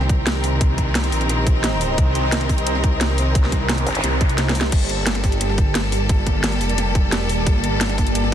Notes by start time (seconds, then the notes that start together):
Already playing: C2 D#3 A#3 C4 G4 A#4 C5 D#5
0.01 A#5, snare
0.09 kick, closed hi-hat
0.27 C2, snare, closed hi-hat
0.44 snare, open hi-hat
0.61 kick, closed hi-hat
0.78 kick, closed hi-hat
0.95 snare, closed hi-hat
1.04 closed hi-hat
1.12 A#1, open hi-hat
1.21 closed hi-hat
1.29 snare, closed hi-hat
1.47 kick, closed hi-hat
1.64 snare, closed hi-hat
1.81 open hi-hat
1.98 C2, kick, closed hi-hat
2.15 C2, closed hi-hat
2.32 snare, closed hi-hat
2.41 snare, closed hi-hat
2.49 kick, snare, open hi-hat
2.58 closed hi-hat
2.67 closed hi-hat
2.75 snare
2.84 kick, closed hi-hat
3.01 C2, snare, closed hi-hat
3.18 snare, open hi-hat
3.35 kick, closed hi-hat, noise sweep
3.44 snare
3.52 kick, closed hi-hat
3.69 snare, closed hi-hat
3.78 snare, closed hi-hat
3.87 G1, open hi-hat
3.95 closed hi-hat
4.04 C2, snare, closed hi-hat
4.21 kick, closed hi-hat
4.29 closed hi-hat
4.38 C2, snare, closed hi-hat
4.49 snare
4.55 open hi-hat
4.61 snare
4.72 G1 G3 A#3 A4, kick, closed hi-hat, crash, ride bell
4.82 A#3
4.89 G1, closed hi-hat
5.07 snare, closed hi-hat, ride bell
5.15 D5, snare, closed hi-hat
5.23 A5, kick, snare, open hi-hat
5.32 closed hi-hat
5.41 closed hi-hat, ride bell
5.49 snare
5.58 kick, closed hi-hat
5.75 G1, snare, closed hi-hat, ride bell
5.92 snare, open hi-hat
6.09 kick, closed hi-hat, ride bell
6.27 kick, closed hi-hat
6.44 snare, closed hi-hat, ride bell
6.52 closed hi-hat
6.61 F1, open hi-hat
6.69 closed hi-hat
6.78 snare, closed hi-hat, ride bell
6.95 kick, closed hi-hat
7.12 snare, closed hi-hat, ride bell
7.21 E1
7.29 open hi-hat
7.47 G1, kick, closed hi-hat, ride bell
7.64 G1, closed hi-hat
7.81 snare, closed hi-hat, ride bell
7.89 snare, closed hi-hat
7.98 kick, snare, open hi-hat
8.07 closed hi-hat
8.15 closed hi-hat, ride bell
8.24 snare